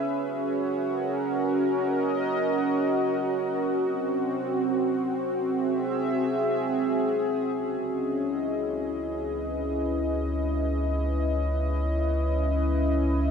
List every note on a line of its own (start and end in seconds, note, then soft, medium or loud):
0.00 1.55 G#4 medium
0.07 3.82 C#4 medium
0.17 8.77 F#4 medium
0.81 3.80 A#4 medium
1.75 3.81 D#5 medium
3.80 7.56 C4 medium
5.46 10.26 G#4 medium
5.46 7.56 E5 medium
7.57 13.31 C#2 medium
7.57 13.31 C#4 medium
7.87 13.31 D#5 medium
8.04 13.31 E4 medium
8.95 13.31 B4 medium